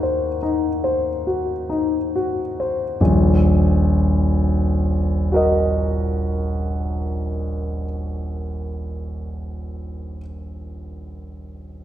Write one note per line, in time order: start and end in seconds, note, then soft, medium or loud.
0.00 2.95 D#2 soft
0.00 0.43 D#4 soft
0.00 1.27 F#4 soft
0.00 0.03 C5 soft
0.00 0.66 C5 soft
0.00 0.37 D#5 soft
0.00 0.37 G#5 soft
0.00 0.37 C6 soft
0.00 0.41 D#6 soft
0.43 1.07 D#4 soft
0.84 1.51 C5 soft
1.27 1.96 F#4 soft
1.70 2.41 D#4 soft
2.16 2.84 F#4 soft
2.60 3.00 C5 soft
3.01 7.85 D#1 soft
3.01 7.84 A#1 soft
5.32 10.16 F#4 soft
5.32 10.18 A#4 soft
5.32 10.20 D#5 soft